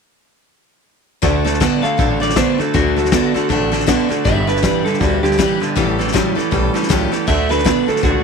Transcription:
1.22 upright bass D2, steel-string acoustic guitar D3 A3 D4 F#4 A4, clean electric guitar D3 A3, kick, snare
1.44 clean electric guitar D3 A3, steel-string acoustic guitar D4 F#4 A4, snare
1.54 snare
1.60 steel-string acoustic guitar D3 A3 D4 F#4 A4, clean electric guitar D3 B3, kick, snare, hi-hat pedal
1.82 clean electric guitar D3 A3 F5, steel-string acoustic guitar D4 F#4 A4, muted upright bass stroke, snare
1.98 upright bass A1, clean electric guitar D3 A3, steel-string acoustic guitar A3 D4 F#4 A4, kick, snare
2.20 clean electric guitar D3 A3 D5, steel-string acoustic guitar D4 F#4 A4, snare
2.29 snare
2.36 steel-string acoustic guitar D3 A3 D4 F#4 A4, clean electric guitar D3 B3 C5, kick, snare, hi-hat pedal
2.58 clean electric guitar D3 A3 A4, steel-string acoustic guitar D4 F#4 A4, muted upright bass stroke, snare
2.74 upright bass D2, steel-string acoustic guitar D3 A3 D4 F#4 A4, clean electric guitar D3 A3 F#4, kick, snare
2.96 clean electric guitar D3 A3, steel-string acoustic guitar D4 F#4 A4, snare
3.05 snare
3.12 steel-string acoustic guitar D3 A3 D4 F#4 A4, clean electric guitar D3 B3, kick, snare, hi-hat pedal
3.34 clean electric guitar D3 A3, steel-string acoustic guitar D4 F#4 A4, muted upright bass stroke, snare
3.49 upright bass A1, clean electric guitar D3 A3, steel-string acoustic guitar A3 D4 F#4 A4, kick, snare
3.72 clean electric guitar D3 A3, steel-string acoustic guitar D4 F#4 A4, snare
3.80 snare
3.87 steel-string acoustic guitar D3 A3 D4 F#4 A4, clean electric guitar D3 B3, kick, snare, hi-hat pedal
4.09 clean electric guitar D3 A3, steel-string acoustic guitar D4 F#4 A4, muted upright bass stroke, snare
4.25 upright bass G1, clean electric guitar G2 D3 E5, steel-string acoustic guitar G3 D4 G4 B4, kick, snare
4.47 clean electric guitar G2 D3 B4, steel-string acoustic guitar D4 G4 B4, snare
4.56 snare
4.62 clean electric guitar G2 E3, steel-string acoustic guitar G3 D4 G4 B4, kick, snare, hi-hat pedal
4.85 clean electric guitar G2 D3 A4, steel-string acoustic guitar D4 G4 B4, muted upright bass stroke, snare
4.94 snare
5.00 upright bass D2, clean electric guitar G2 D3 F#4, steel-string acoustic guitar G3 D4 G4 B4, kick, snare
5.23 clean electric guitar G2 D3 G4, steel-string acoustic guitar D4 G4 B4, snare
5.31 snare
5.38 clean electric guitar G2 E3, steel-string acoustic guitar G3 D4 G4 B4, kick, snare, hi-hat pedal
5.60 clean electric guitar G2 D3, steel-string acoustic guitar D4 G4 B4, muted upright bass stroke, snare
5.76 upright bass A1, steel-string acoustic guitar A2 E3 G3 C#4 G4 A4, clean electric guitar A2 E3, kick, snare
5.98 clean electric guitar A2 E3, steel-string acoustic guitar G3 C#4 G4 A4, snare
6.08 snare
6.13 steel-string acoustic guitar A2 E3 G3 C#4 G4 A4, clean electric guitar A2 F#3, kick, snare, hi-hat pedal
6.35 clean electric guitar A2 E3, steel-string acoustic guitar G3 C#4 G4 A4, muted upright bass stroke, snare
6.51 upright bass B1, clean electric guitar A2 E3, steel-string acoustic guitar G3 C#4 G4 A4, kick, snare
6.74 clean electric guitar A2 E3, steel-string acoustic guitar G3 C#4 G4 A4, snare
6.83 snare
6.89 upright bass C#2, steel-string acoustic guitar A2 E3 G3 C#4 G4 A4, clean electric guitar A2 F#3, kick, snare, hi-hat pedal
7.12 clean electric guitar A2 E3, steel-string acoustic guitar G3 C#4 G4 A4, snare
7.27 upright bass D2, steel-string acoustic guitar D3 A3 D4 F#4 A4, clean electric guitar D3 A3 E5, kick, snare
7.49 clean electric guitar D3 A3 B4, steel-string acoustic guitar D4 F#4 A4, snare
7.59 snare
7.64 steel-string acoustic guitar D3 A3 D4 F#4 A4, clean electric guitar D3 B3, kick, snare, hi-hat pedal
7.86 clean electric guitar D3 A3 A4, steel-string acoustic guitar D4 F#4 A4, muted upright bass stroke, snare
7.96 snare
8.01 upright bass C#2, clean electric guitar D3 A3 F#4, steel-string acoustic guitar A3 D4 F#4 A4, kick, snare

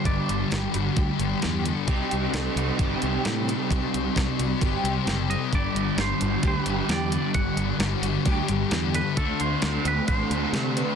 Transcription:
Already playing: overdriven electric guitar G2 D3 G3 B3 D4 G4
0.05 picked electric bass G1, distorted electric guitar G2 D3 G3, clean electric guitar D5, kick, closed hi-hat
0.29 picked electric bass G1, closed hi-hat
0.51 picked electric bass G1, distorted electric guitar G2 D3 G3, twelve-string acoustic guitar G4, snare, closed hi-hat
0.74 picked electric bass G1, twelve-string acoustic guitar F#4, closed hi-hat
0.96 picked electric bass D2, distorted electric guitar G2 D3 G3, twelve-string acoustic guitar G4, kick, closed hi-hat
1.19 picked electric bass G1, distorted electric guitar D3 G3, closed hi-hat
1.41 picked electric bass E2, distorted electric guitar G2 D3 G3, twelve-string acoustic guitar G4, snare, closed hi-hat
1.66 twelve-string acoustic guitar A4, closed hi-hat
1.87 picked electric bass C2, overdriven electric guitar C3 G3 C4 D#4 G4, distorted electric guitar C3 G3, twelve-string acoustic guitar G4, kick, closed hi-hat
1.91 distorted electric guitar C4
2.11 picked electric bass C2, closed hi-hat
2.33 picked electric bass C2, distorted electric guitar C3 G3 C4, twelve-string acoustic guitar A4, snare, closed hi-hat
2.56 picked electric bass C2, twelve-string acoustic guitar F#4, closed hi-hat
2.78 picked electric bass G1, distorted electric guitar C3 G3 C4, twelve-string acoustic guitar G4, kick, closed hi-hat
3.02 picked electric bass C2, distorted electric guitar G3 C4, closed hi-hat
3.24 picked electric bass A2, distorted electric guitar C3 G3 C4, twelve-string acoustic guitar G4, snare, closed hi-hat
3.48 twelve-string acoustic guitar A4, closed hi-hat
3.70 picked electric bass C2, distorted electric guitar C3 G3 C4, twelve-string acoustic guitar G4, kick, closed hi-hat
3.94 picked electric bass C2, closed hi-hat
4.16 picked electric bass C2, distorted electric guitar C3 G3 C4, twelve-string acoustic guitar A4, kick, snare, closed hi-hat
4.39 picked electric bass C2, twelve-string acoustic guitar F#4, closed hi-hat
4.61 picked electric bass G1, distorted electric guitar C3 G3 C4, twelve-string acoustic guitar G4, kick, closed hi-hat
4.84 picked electric bass C2, distorted electric guitar G3 C4, closed hi-hat
5.06 picked electric bass F#1, distorted electric guitar C3 G3 C4, twelve-string acoustic guitar G4, snare, closed hi-hat
5.30 twelve-string acoustic guitar A4, clean electric guitar D#5, closed hi-hat
5.52 picked electric bass G1, overdriven electric guitar G2 D3 G3 B3 D4 G4, distorted electric guitar G2 D3 G3, clean electric guitar D5, kick, closed hi-hat
5.75 picked electric bass G1, closed hi-hat
5.97 picked electric bass G1, distorted electric guitar G2 D3 G3, twelve-string acoustic guitar G4, clean electric guitar C5, snare, closed hi-hat
6.21 picked electric bass G1, twelve-string acoustic guitar F#4, closed hi-hat
6.43 picked electric bass D2, distorted electric guitar G2 D3 G3, twelve-string acoustic guitar G4, kick, closed hi-hat
6.47 clean electric guitar B4
6.66 picked electric bass G1, distorted electric guitar D3 G3, closed hi-hat
6.89 picked electric bass E2, distorted electric guitar G2 D3 G3, twelve-string acoustic guitar G4, clean electric guitar D5, snare, closed hi-hat
7.12 twelve-string acoustic guitar A4, closed hi-hat
7.34 picked electric bass G1, distorted electric guitar G2 D3 G3, clean electric guitar F#5, kick, closed hi-hat
7.57 picked electric bass G1, closed hi-hat
7.79 picked electric bass G1, distorted electric guitar G2 D3 G3, twelve-string acoustic guitar G4, snare, closed hi-hat
8.02 picked electric bass G1, twelve-string acoustic guitar F#4, closed hi-hat
8.25 picked electric bass D2, distorted electric guitar G2 D3 G3, twelve-string acoustic guitar G4, kick, closed hi-hat
8.48 picked electric bass G1, distorted electric guitar D3 G3, closed hi-hat
8.71 picked electric bass E2, distorted electric guitar G2 D3 G3, twelve-string acoustic guitar G4, snare, closed hi-hat
8.94 twelve-string acoustic guitar A4, clean electric guitar B4, closed hi-hat
9.17 picked electric bass D2, overdriven electric guitar D3 A3 C4 F#4, distorted electric guitar D3 A3 D4, clean electric guitar A4, kick, closed hi-hat
9.40 picked electric bass D2, clean electric guitar C5, closed hi-hat
9.62 picked electric bass D2, distorted electric guitar D3 A3, twelve-string acoustic guitar A4, snare, closed hi-hat
9.66 distorted electric guitar D4
9.85 picked electric bass D2, twelve-string acoustic guitar G4, clean electric guitar B4, closed hi-hat
10.08 picked electric bass A1, distorted electric guitar D3 A3 D4, twelve-string acoustic guitar A4, clean electric guitar C5, kick, closed hi-hat
10.30 picked electric bass D2, distorted electric guitar A3 D4, closed hi-hat
10.53 picked electric bass C3, distorted electric guitar D3 A3, twelve-string acoustic guitar A4, snare, closed hi-hat
10.57 distorted electric guitar D4
10.77 twelve-string acoustic guitar B4, closed hi-hat

